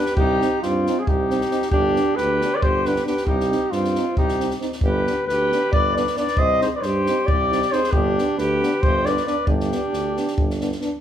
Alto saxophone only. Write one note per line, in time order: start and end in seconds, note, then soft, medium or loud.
0.00 0.15 G4 medium
0.19 0.60 D#4 medium
0.64 1.05 C4 medium
1.04 1.10 F4 medium
1.08 1.71 D#4 medium
1.71 2.18 D4 medium
2.16 2.58 G4 medium
2.56 2.65 B4 medium
2.63 2.88 G4 medium
2.88 3.06 G4 medium
3.07 3.30 G4 medium
3.28 3.75 D#4 medium
3.73 4.17 C4 medium
4.17 4.54 D#4 medium
4.83 5.25 G4 medium
5.30 5.71 G4 medium
5.75 5.95 B4 medium
5.97 6.15 B4 medium
6.18 6.39 B4 medium
6.38 6.62 C5 medium
6.64 6.70 G#4 medium
6.77 6.87 B4 medium
6.85 7.31 G4 medium
7.31 7.75 G4 medium
7.73 7.96 G#4 medium
7.94 8.39 D4 medium
8.39 8.84 G4 medium
8.84 9.10 G4 medium
9.08 9.27 B4 medium
9.28 9.46 B4 medium
9.48 10.78 D4 medium